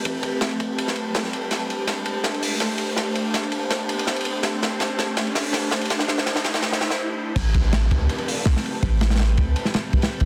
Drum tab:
CC |--------------------------------|--------------------------------|--------------------------------|--------------------------------|
RD |x---x---x-x-x---x---x---x---x---|x---x---x---x---x-x-----x---x---|x---x---x-x-x---x---x-x-x-xxx---|x---x---x---x---x-x-----x---xxxx|
HH |--------------------------------|--------------------o-----------|--------------------------------|--------------------o-----------|
SD |--------o---------o-----o-o-----|o-------o-------o-------o-------|o-------o-------o-------o-------|o---o---o---o---o---o---o---o---|
BD |o---o-------o-------------------|--------------------------------|--------------------------------|--------------------------------|

CC |--------------------------------|x-------------------------------|--------------------------------|
RD |x---x---x-x-x-x-x-x-------------|x---x---x---x---x-x-----x---x---|x---x-xxx-x-x---x---x---x-x---x-|
HH |--------------------------------|--------------------o-----------|--------------------------------|
SD |o-o-o-o-o-o-o-o-o-o-o-o---------|--------o---------------o-o-----|----o-ooo---------o-o-----o-----|
BD |--------------------------------|o---o-------o-------------------|o-----------o-----------o-----o-|